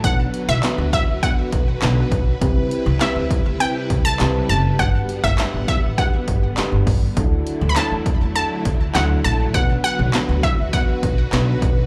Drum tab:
HH |x-x-x-x-x-x-x-x-|x-x-x-x-x-x-x-x-|x-x-x-x-x-x-x-o-|x-x-x-x-x-x-x-x-|
CP |----x-------x---|----x-------x---|----x-------x---|----x-------x---|
SD |----o-------o---|----o-------o---|----o-------o---|----o-------o---|
BD |o-----o-o-o---o-|o-----o---o-----|o--o--o-o-o---o-|o-----o---o-----|

HH |x-x-x-x-x-x-x-x-|
CP |----x-------x---|
SD |----o-------o---|
BD |o-----o-o-o---o-|